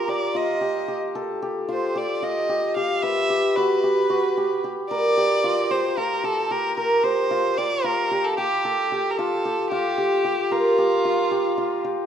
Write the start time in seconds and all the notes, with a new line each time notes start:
Already playing: F4 A#4
0.08 G4 D5
0.35 F4 D#5
0.61 G4
0.88 G4
1.15 A4
1.42 G4
1.69 F4 C5
1.96 G4 D5
2.22 F4 D#5
2.49 G4
2.76 G4 F5
3.03 B4 E5
3.30 G4
3.56 F#4 B4
3.84 G4
4.10 F#4
4.37 G4
4.64 G4
4.90 A#4 D5
5.17 G4
5.44 F4
5.71 G4 C5
5.97 F4 A#4
6.24 G4 A4
6.51 G4 A#4
6.77 A#4
7.03 G4 C5
7.31 F4
7.58 G4 D5
7.84 F4 A#4
8.11 G4
8.24 A4
8.37 G4
8.65 A4
8.92 G4
9.11 A#4
9.18 F4 A4
9.45 G4
9.71 F4 G4
9.98 G4
10.25 G4
10.51 F4 A#4
10.78 G4
11.05 F4
11.31 G4
11.58 F4
11.85 G4